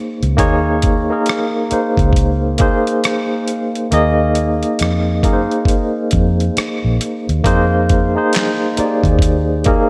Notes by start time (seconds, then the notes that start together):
Already playing: A#3 D#4 G#4 C5
0.23 C#2, closed hi-hat
0.37 D#2 A#3 D#4 G#4 C#5, kick, closed hi-hat
0.82 kick, closed hi-hat
1.10 A#3 D#4 G#4 A#4
1.26 cross-stick, closed hi-hat
1.70 A#3 D#4 G#4 C5, muted fingered electric bass stroke, closed hi-hat
1.97 C#2, kick, closed hi-hat
2.13 kick, closed hi-hat
2.58 A#3 D#4 G#4 C5, kick, closed hi-hat
2.87 closed hi-hat
3.04 cross-stick, closed hi-hat
3.48 closed hi-hat
3.75 closed hi-hat
3.91 D#2 A#3 D#4 G#4 D#5, closed hi-hat
4.35 closed hi-hat
4.63 closed hi-hat
4.79 F2, cross-stick, closed hi-hat
5.23 F#2 A#3 D#4 G#4 A#4, kick, closed hi-hat
5.33 C5
5.51 closed hi-hat
5.65 kick, closed hi-hat
6.11 F2, kick, closed hi-hat
6.40 closed hi-hat
6.57 muted fingered electric bass stroke, cross-stick, closed hi-hat
6.84 A#1
7.01 closed hi-hat
7.29 D#2, closed hi-hat
7.44 F2 A#3 D#4 G#4 C5, kick, closed hi-hat
7.89 kick, closed hi-hat
8.15 A#3 D#4 G#4 C5
8.33 snare, clap, closed hi-hat
8.77 A#3 D#4 G4 D5, muted fingered electric bass stroke, closed hi-hat
8.85 G#4
9.04 D#2, kick, closed hi-hat
9.19 kick, closed hi-hat
9.64 A#3 D#4 G#4 A#4, kick, closed hi-hat